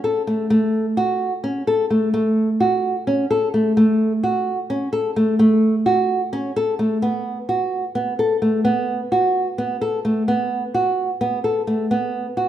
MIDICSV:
0, 0, Header, 1, 2, 480
1, 0, Start_track
1, 0, Tempo, 465116
1, 525, Time_signature, 7, 3, 24, 8
1, 12885, End_track
2, 0, Start_track
2, 0, Title_t, "Nylon-string guitar"
2, 0, Program_c, 0, 24
2, 40, Note_on_c, 0, 69, 62
2, 220, Note_off_c, 0, 69, 0
2, 282, Note_on_c, 0, 57, 63
2, 461, Note_off_c, 0, 57, 0
2, 519, Note_on_c, 0, 57, 77
2, 879, Note_off_c, 0, 57, 0
2, 1002, Note_on_c, 0, 66, 74
2, 1361, Note_off_c, 0, 66, 0
2, 1483, Note_on_c, 0, 61, 75
2, 1663, Note_off_c, 0, 61, 0
2, 1727, Note_on_c, 0, 69, 69
2, 1906, Note_off_c, 0, 69, 0
2, 1965, Note_on_c, 0, 57, 64
2, 2145, Note_off_c, 0, 57, 0
2, 2205, Note_on_c, 0, 57, 78
2, 2563, Note_off_c, 0, 57, 0
2, 2687, Note_on_c, 0, 66, 67
2, 3045, Note_off_c, 0, 66, 0
2, 3169, Note_on_c, 0, 61, 80
2, 3348, Note_off_c, 0, 61, 0
2, 3411, Note_on_c, 0, 69, 70
2, 3589, Note_off_c, 0, 69, 0
2, 3652, Note_on_c, 0, 57, 68
2, 3830, Note_off_c, 0, 57, 0
2, 3890, Note_on_c, 0, 57, 77
2, 4247, Note_off_c, 0, 57, 0
2, 4370, Note_on_c, 0, 66, 73
2, 4727, Note_off_c, 0, 66, 0
2, 4849, Note_on_c, 0, 61, 77
2, 5029, Note_off_c, 0, 61, 0
2, 5083, Note_on_c, 0, 69, 74
2, 5265, Note_off_c, 0, 69, 0
2, 5329, Note_on_c, 0, 57, 67
2, 5508, Note_off_c, 0, 57, 0
2, 5565, Note_on_c, 0, 57, 86
2, 5924, Note_off_c, 0, 57, 0
2, 6046, Note_on_c, 0, 66, 73
2, 6405, Note_off_c, 0, 66, 0
2, 6530, Note_on_c, 0, 61, 80
2, 6709, Note_off_c, 0, 61, 0
2, 6774, Note_on_c, 0, 69, 77
2, 6952, Note_off_c, 0, 69, 0
2, 7008, Note_on_c, 0, 57, 72
2, 7188, Note_off_c, 0, 57, 0
2, 7248, Note_on_c, 0, 59, 79
2, 7606, Note_off_c, 0, 59, 0
2, 7728, Note_on_c, 0, 66, 69
2, 8085, Note_off_c, 0, 66, 0
2, 8206, Note_on_c, 0, 59, 71
2, 8386, Note_off_c, 0, 59, 0
2, 8452, Note_on_c, 0, 69, 66
2, 8630, Note_off_c, 0, 69, 0
2, 8688, Note_on_c, 0, 57, 61
2, 8867, Note_off_c, 0, 57, 0
2, 8922, Note_on_c, 0, 59, 80
2, 9282, Note_off_c, 0, 59, 0
2, 9410, Note_on_c, 0, 66, 71
2, 9766, Note_off_c, 0, 66, 0
2, 9889, Note_on_c, 0, 59, 73
2, 10067, Note_off_c, 0, 59, 0
2, 10129, Note_on_c, 0, 69, 69
2, 10307, Note_off_c, 0, 69, 0
2, 10369, Note_on_c, 0, 57, 65
2, 10547, Note_off_c, 0, 57, 0
2, 10609, Note_on_c, 0, 59, 79
2, 10965, Note_off_c, 0, 59, 0
2, 11088, Note_on_c, 0, 66, 73
2, 11444, Note_off_c, 0, 66, 0
2, 11567, Note_on_c, 0, 59, 72
2, 11745, Note_off_c, 0, 59, 0
2, 11807, Note_on_c, 0, 69, 67
2, 11985, Note_off_c, 0, 69, 0
2, 12046, Note_on_c, 0, 57, 63
2, 12225, Note_off_c, 0, 57, 0
2, 12289, Note_on_c, 0, 59, 74
2, 12644, Note_off_c, 0, 59, 0
2, 12766, Note_on_c, 0, 66, 70
2, 12885, Note_off_c, 0, 66, 0
2, 12885, End_track
0, 0, End_of_file